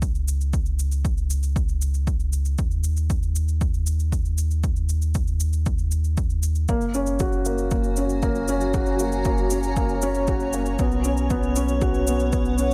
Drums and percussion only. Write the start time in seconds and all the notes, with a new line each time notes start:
0.02 kick, shaker
0.15 shaker
0.28 shaker
0.41 shaker
0.53 kick, shaker
0.66 shaker
0.79 shaker
0.92 shaker
1.05 kick, shaker
1.18 shaker
1.30 shaker
1.43 shaker
1.56 kick, shaker
1.69 shaker
1.82 shaker
1.94 shaker
2.07 kick, shaker
2.20 shaker
2.33 shaker
2.45 shaker
2.58 kick, shaker
2.71 shaker
2.84 shaker
2.97 shaker
3.10 kick, shaker
3.23 shaker
3.36 shaker
3.48 shaker
3.61 kick, shaker
3.74 shaker
3.87 shaker
4.00 shaker
4.12 kick, shaker
4.25 shaker
4.38 shaker
4.51 shaker
4.63 kick, shaker
4.76 shaker
4.89 shaker
5.02 shaker
5.15 kick, shaker
5.28 shaker
5.40 shaker
5.53 shaker
5.66 kick, shaker
5.79 shaker
5.91 shaker
6.04 shaker
6.17 kick, shaker
6.30 shaker
6.43 shaker
6.55 shaker
6.68 kick, shaker
6.81 shaker
6.94 shaker
7.07 shaker
7.19 kick, shaker
7.32 shaker
7.45 shaker
7.58 shaker
7.71 kick, shaker
7.84 shaker
7.96 shaker
8.09 shaker
8.22 kick, shaker
8.35 shaker
8.48 shaker
8.61 shaker
8.73 kick, shaker
8.86 shaker
8.99 shaker
9.12 shaker
9.25 kick, shaker
9.38 shaker
9.50 shaker
9.63 shaker
9.76 kick, shaker
9.89 shaker
10.02 shaker
10.15 shaker
10.27 kick, shaker
10.40 shaker
10.53 shaker
10.66 shaker
10.79 kick, shaker
10.92 shaker
11.04 shaker
11.17 shaker
11.30 kick, shaker
11.43 shaker
11.56 shaker
11.68 shaker
11.81 kick, shaker
11.94 shaker
12.07 shaker
12.20 shaker
12.32 kick, shaker
12.45 shaker
12.58 shaker